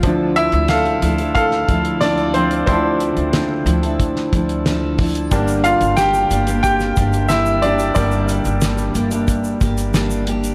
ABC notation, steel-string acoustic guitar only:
X:1
M:4/4
L:1/16
Q:1/4=91
K:Dm
V:1 name="Steel-string acoustic guitar"
[D,F,DEA]6 [F,DEA] [DEA]3 [F,DEA]2 [F,DEA]2 [F,DEA]2 | [D,F,DEA]6 [F,DEA] [DEA]3 [F,DEA]2 [F,DEA]2 [F,DEA]2 | [G,,D,G,B,DG]6 [G,B,DG] [G,B,DG]3 [G,B,DG]2 [G,B,DG]2 [G,B,DG]2 | [G,,D,G,B,DG]6 [G,B,DG] [G,B,DG]3 [G,B,DG]2 [G,B,DG]2 [G,B,DG]2 |]